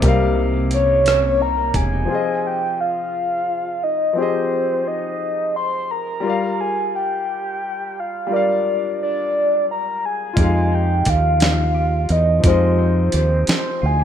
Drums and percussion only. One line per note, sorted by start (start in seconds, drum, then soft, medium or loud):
0.02 kick loud
0.02 closed hi-hat medium
0.71 closed hi-hat medium
1.06 cross-stick loud
1.06 closed hi-hat medium
1.74 kick medium
1.74 closed hi-hat medium
10.37 kick loud
10.37 closed hi-hat medium
11.05 kick medium
11.05 closed hi-hat medium
11.40 snare loud
11.40 closed hi-hat medium
12.09 closed hi-hat medium
12.44 kick loud
12.44 closed hi-hat medium
13.12 closed hi-hat medium
13.47 snare loud
13.47 closed hi-hat medium